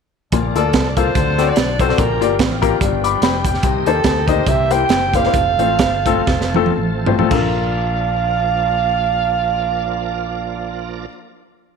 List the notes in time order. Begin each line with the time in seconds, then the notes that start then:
0.32 A#1 A#2 F3 A#3 D4 A4 D5 F5 A5, kick, closed hi-hat
0.55 D2 A#3 F4 A4 D5, closed hi-hat
0.73 C2, kick, snare, closed hi-hat
0.89 D5
0.97 A#3 F4 A4 C5 F5, kick, closed hi-hat
1.15 D2 D3 F#3 C4 C5 F#5, kick, closed hi-hat
1.38 C4 F#4 A4 D5, snare, closed hi-hat
1.48 D5
1.56 B1, snare, closed hi-hat
1.79 C4 F#4 A4 C5, kick, closed hi-hat
1.89 C4 F#4 A4 D5, snare
1.97 A#1 A#2 F3 A#3 D4 G4 A#4 F5 G5, kick, closed hi-hat
2.21 G1 A#3 F4 G4 D5, closed hi-hat
2.39 A1, kick, snare, closed hi-hat
2.62 A#3 F4 G4 A#4, kick, closed hi-hat
2.80 G1 G2 B3 D4 B4, kick, closed hi-hat
3.04 B5 D6, closed hi-hat
3.22 F1 G5 B5, snare, closed hi-hat
3.45 G5, kick, closed hi-hat
3.54 snare
3.63 C2 C3 A#3 C4 D#4 C5 D#5, kick, closed hi-hat
3.85 D#2 A#3 D#4 G4 A4 C5, closed hi-hat
4.04 D2, kick, snare, closed hi-hat
4.27 A#3 D#4 G4 C5 D#5, kick, closed hi-hat
4.47 C2 C3 E3 E5, kick, closed hi-hat
4.70 A#3 E4 G4 C5 G5, closed hi-hat
4.89 F#1, snare, closed hi-hat
5.14 A#3 E4 G4 C5 F5, kick, closed hi-hat
5.24 A#3 E4 G4 C5, snare
5.33 F1 F3 A3 A4 F5 A5, kick, closed hi-hat
5.57 A1 A3 C4 F4 C5, closed hi-hat
5.79 G1, kick, snare, closed hi-hat
6.06 A3 C4 F4 A4, kick, closed hi-hat
6.27 F1, kick, snare
6.41 snare
6.54 A3 C4 F4 A4, high tom
6.66 high tom
6.77 A1
7.06 A3 C4 F4 C5, floor tom
7.18 A3 C4 F4 A4, floor tom
7.29 A#1 F3 A#3 D4 F4 A4 A#4 D5 F5 A5, kick, crash